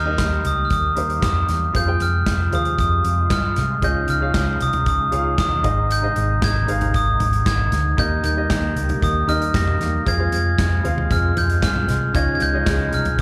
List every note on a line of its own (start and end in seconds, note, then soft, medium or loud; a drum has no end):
0.00 0.14 D#2 medium
0.00 0.41 D#3 soft
0.00 1.73 D#3 medium
0.00 1.73 G3 medium
0.00 1.73 A#3 medium
0.00 0.05 D#4 medium
0.00 0.05 G4 medium
0.00 1.73 G4 medium
0.00 0.06 A#4 medium
0.00 0.07 D#5 medium
0.00 0.43 F6 medium
0.05 0.88 D#4 medium
0.05 0.89 G4 medium
0.05 0.89 A#4 medium
0.05 0.89 D#5 medium
0.18 0.40 D#2 medium
0.18 kick medium
0.18 snare medium
0.18 clap medium
0.18 closed hi-hat medium
0.45 0.66 C#2 medium
0.45 0.65 D#6 medium
0.45 closed hi-hat medium
0.65 0.71 F6 medium
0.70 0.92 D#2 medium
0.70 1.23 D#6 medium
0.70 kick medium
0.70 closed hi-hat medium
0.96 1.18 D#2 medium
0.96 1.68 D#4 medium
0.96 1.68 G4 medium
0.96 1.68 A#4 medium
0.96 1.69 C5 medium
0.96 closed hi-hat medium
1.10 closed hi-hat soft
1.22 1.44 F2 medium
1.22 1.77 D#6 medium
1.22 kick loud
1.22 snare loud
1.22 clap medium
1.22 closed hi-hat medium
1.49 1.70 E2 medium
1.49 snare soft
1.49 closed hi-hat medium
1.73 1.96 F2 medium
1.73 3.80 C3 medium
1.73 3.80 F3 medium
1.73 7.94 G#3 medium
1.73 1.85 F4 medium
1.73 3.81 F4 medium
1.73 1.86 G#4 medium
1.73 1.86 C5 medium
1.73 1.87 F5 medium
1.73 2.02 G6 medium
1.73 kick medium
1.73 closed hi-hat medium
1.87 2.47 F4 medium
1.87 2.47 G#4 medium
1.87 2.47 C5 medium
1.87 2.48 G5 medium
2.00 2.22 F2 medium
2.00 2.55 F6 medium
2.00 closed hi-hat medium
2.26 2.48 F2 medium
2.26 kick medium
2.26 snare medium
2.26 clap medium
2.26 closed hi-hat medium
2.52 2.74 D#2 medium
2.52 3.47 F4 medium
2.52 3.48 G#4 medium
2.52 3.48 C5 medium
2.52 3.48 F5 medium
2.52 2.79 D#6 medium
2.52 closed hi-hat medium
2.65 closed hi-hat soft
2.79 3.00 F2 medium
2.79 3.33 D#6 medium
2.79 kick medium
2.79 closed hi-hat medium
3.05 3.26 F2 medium
3.05 closed hi-hat medium
3.30 3.52 G2 medium
3.30 3.85 F6 medium
3.30 kick loud
3.30 snare loud
3.30 clap medium
3.30 closed hi-hat medium
3.56 3.78 C2 medium
3.56 snare soft
3.56 closed hi-hat medium
3.81 4.04 C#2 medium
3.81 5.62 C#3 medium
3.81 4.56 C#3 medium
3.81 5.62 F3 medium
3.81 5.62 D#4 medium
3.81 4.18 F4 medium
3.81 4.18 G#4 medium
3.81 4.18 C#5 medium
3.81 4.19 D#5 medium
3.81 4.10 G6 medium
3.81 kick medium
3.81 closed hi-hat medium
4.08 4.30 C#2 medium
4.08 4.63 F6 medium
4.08 closed hi-hat medium
4.21 5.04 F4 medium
4.21 5.05 G#4 medium
4.21 5.05 C#5 medium
4.21 5.05 F5 medium
4.34 4.56 C#2 medium
4.34 kick medium
4.34 snare medium
4.34 clap medium
4.34 closed hi-hat medium
4.60 4.82 C2 medium
4.60 4.87 D#6 medium
4.60 closed hi-hat medium
4.73 closed hi-hat soft
4.73 floor tom medium
4.86 5.08 C#2 medium
4.86 5.39 D#6 medium
4.86 kick medium
4.86 closed hi-hat medium
5.11 5.34 C#2 medium
5.11 5.64 F4 medium
5.11 5.62 G#4 medium
5.11 5.64 C#5 medium
5.11 5.65 F5 medium
5.11 closed hi-hat medium
5.38 5.60 D#2 medium
5.38 5.93 D#6 medium
5.38 kick loud
5.38 snare loud
5.38 clap medium
5.38 closed hi-hat medium
5.51 floor tom medium
5.63 6.07 G#1 medium
5.63 6.38 G#2 medium
5.63 7.96 C3 medium
5.63 7.96 D#3 medium
5.63 5.99 D#4 medium
5.63 7.96 D#4 medium
5.63 6.00 G#4 medium
5.63 6.00 C5 medium
5.63 6.00 D#5 medium
5.63 kick medium
5.63 closed hi-hat medium
5.91 6.45 G6 medium
5.91 closed hi-hat medium
6.02 6.62 D#4 medium
6.02 6.63 G#4 medium
6.02 6.63 C5 medium
6.02 6.63 D#5 medium
6.16 6.38 G#1 medium
6.16 closed hi-hat medium
6.42 6.64 G#1 medium
6.42 6.97 G#6 medium
6.42 kick medium
6.42 snare loud
6.42 clap medium
6.42 closed hi-hat medium
6.67 7.63 D#4 medium
6.67 7.63 G#4 medium
6.67 7.64 C5 medium
6.67 7.64 F5 medium
6.67 closed hi-hat medium
6.81 closed hi-hat soft
6.81 floor tom medium
6.94 7.16 G#1 medium
6.94 7.49 D#6 medium
6.94 kick medium
6.94 closed hi-hat medium
7.20 7.42 G#1 medium
7.20 closed hi-hat medium
7.20 floor tom medium
7.33 closed hi-hat medium
7.46 7.68 G#1 medium
7.46 8.00 G#6 medium
7.46 kick medium
7.46 snare loud
7.46 clap medium
7.46 closed hi-hat medium
7.59 floor tom medium
7.72 7.94 D2 medium
7.72 snare soft
7.72 closed hi-hat medium
7.97 8.20 D#2 medium
7.97 8.24 D#3 medium
7.97 8.72 D#3 medium
7.97 10.04 D#3 medium
7.97 10.04 G3 medium
7.97 10.04 A#3 medium
7.97 8.24 A#3 medium
7.97 8.33 D#4 medium
7.97 8.24 D#4 medium
7.97 8.34 G4 medium
7.97 10.04 G4 medium
7.97 8.22 G4 medium
7.97 8.34 A#4 medium
7.97 8.35 D#5 medium
7.97 8.24 G6 medium
7.97 kick medium
7.97 closed hi-hat medium
8.23 8.45 D#2 medium
8.23 8.49 A#3 soft
8.23 8.51 D#4 soft
8.23 8.50 G4 soft
8.23 8.73 G6 medium
8.23 closed hi-hat medium
8.36 9.20 D#4 medium
8.36 9.20 G4 medium
8.36 9.21 A#4 medium
8.36 9.21 D#5 medium
8.49 8.72 D#2 medium
8.49 8.76 D#3 medium
8.49 8.76 A#3 medium
8.49 8.76 D#4 medium
8.49 8.74 G4 medium
8.49 kick loud
8.49 snare loud
8.49 clap medium
8.49 closed hi-hat medium
8.75 8.97 C#2 medium
8.75 9.01 A#3 soft
8.75 9.02 D#4 soft
8.75 9.02 G4 medium
8.75 closed hi-hat medium
8.89 closed hi-hat soft
8.89 floor tom medium
9.01 9.24 D#2 medium
9.01 9.28 D#3 medium
9.01 9.28 A#3 medium
9.01 9.28 D#4 medium
9.01 9.26 G4 medium
9.01 9.27 D#6 medium
9.01 kick medium
9.01 closed hi-hat medium
9.27 9.49 D#2 medium
9.27 9.53 A#3 soft
9.27 10.00 D#4 medium
9.27 9.54 D#4 soft
9.27 9.54 G4 medium
9.27 10.00 G4 medium
9.27 10.00 A#4 medium
9.27 10.00 D#5 medium
9.27 9.55 F6 medium
9.27 closed hi-hat medium
9.42 closed hi-hat medium
9.53 9.76 F2 medium
9.53 9.80 D#3 medium
9.53 9.81 A#3 medium
9.53 9.80 D#4 medium
9.53 9.78 G4 medium
9.53 10.03 A#6 medium
9.53 kick loud
9.53 snare loud
9.53 clap medium
9.53 closed hi-hat medium
9.68 floor tom medium
9.80 10.01 E2 medium
9.80 10.07 A#3 soft
9.80 10.07 D#4 soft
9.80 10.06 G4 medium
9.80 snare soft
9.80 closed hi-hat medium
10.06 10.32 F2 medium
10.06 10.28 F2 medium
10.06 12.13 C3 medium
10.06 10.32 C3 medium
10.06 12.13 F3 medium
10.06 10.33 F3 medium
10.06 13.22 G#3 medium
10.06 10.32 G#3 medium
10.06 10.31 C4 medium
10.06 10.17 F4 medium
10.06 12.13 F4 medium
10.06 10.17 G#4 medium
10.06 10.30 G#4 medium
10.06 10.18 C5 medium
10.06 10.19 F5 medium
10.06 10.33 G#6 medium
10.06 kick medium
10.06 closed hi-hat medium
10.18 10.79 F4 medium
10.18 10.79 G#4 medium
10.18 10.79 C5 medium
10.18 10.79 F5 medium
10.31 10.54 F2 medium
10.31 10.56 F3 soft
10.31 10.58 G#3 soft
10.31 10.59 C4 soft
10.31 10.58 G#4 medium
10.31 10.82 G#6 medium
10.31 closed hi-hat medium
10.57 10.80 F2 medium
10.57 10.84 F3 medium
10.57 10.84 G#3 medium
10.57 10.83 C4 medium
10.57 10.82 G#4 medium
10.57 kick medium
10.57 snare medium
10.57 clap medium
10.57 closed hi-hat medium
10.83 11.06 D#2 medium
10.83 11.09 F3 soft
10.83 11.10 G#3 soft
10.83 11.10 C4 soft
10.83 11.79 F4 medium
10.83 11.10 G#4 medium
10.83 11.80 G#4 medium
10.83 11.80 C5 medium
10.83 11.80 F5 medium
10.83 closed hi-hat medium
10.98 floor tom medium
11.10 11.36 F2 medium
11.10 11.32 F2 medium
11.10 11.36 C3 medium
11.10 11.37 F3 medium
11.10 11.37 G#3 medium
11.10 11.35 C4 medium
11.10 11.34 G#4 medium
11.10 11.38 F6 medium
11.10 kick medium
11.10 closed hi-hat medium
11.35 11.58 F2 medium
11.35 11.61 F3 soft
11.35 11.62 G#3 soft
11.35 11.63 C4 medium
11.35 11.62 G#4 medium
11.35 11.64 G6 medium
11.35 closed hi-hat medium
11.35 floor tom medium
11.49 closed hi-hat medium
11.62 11.84 G2 medium
11.62 11.88 F3 medium
11.62 11.89 G#3 medium
11.62 11.88 C4 medium
11.62 11.87 G#4 medium
11.62 12.17 F6 medium
11.62 kick loud
11.62 snare loud
11.62 clap medium
11.62 closed hi-hat medium
11.76 floor tom medium
11.88 12.10 C2 medium
11.88 12.13 F3 soft
11.88 12.14 G#3 soft
11.88 12.15 C4 medium
11.88 12.14 G#4 medium
11.88 snare soft
11.88 closed hi-hat medium
12.14 12.36 C#2 medium
12.14 12.40 C#3 medium
12.14 12.89 C#3 medium
12.14 13.22 C#3 medium
12.14 12.41 F3 medium
12.14 13.22 F3 medium
12.14 12.41 G#3 medium
12.14 13.22 D#4 medium
12.14 12.40 D#4 medium
12.14 12.50 F4 medium
12.14 12.50 G#4 medium
12.14 12.39 G#4 medium
12.14 12.51 C#5 medium
12.14 12.51 D#5 medium
12.14 12.34 G#6 loud
12.14 kick loud
12.14 closed hi-hat medium
12.35 12.42 G#6 medium
12.40 12.63 C#2 medium
12.40 12.66 G#3 soft
12.40 12.67 D#4 medium
12.40 12.66 G#4 medium
12.40 12.95 G6 loud
12.40 closed hi-hat medium
12.53 13.22 F4 medium
12.53 13.22 G#4 medium
12.53 13.22 C#5 medium
12.53 13.22 D#5 medium
12.66 12.88 C#2 medium
12.66 12.92 F3 medium
12.66 12.93 G#3 medium
12.66 12.92 D#4 medium
12.66 12.91 G#4 medium
12.66 kick loud
12.66 snare loud
12.66 clap medium
12.66 closed hi-hat medium
12.92 13.14 C2 medium
12.92 13.19 G#3 soft
12.92 13.19 D#4 medium
12.92 13.18 G#4 medium
12.92 13.18 F6 medium
12.92 closed hi-hat medium
13.05 closed hi-hat soft
13.05 floor tom medium
13.18 13.22 C#3 medium
13.18 closed hi-hat medium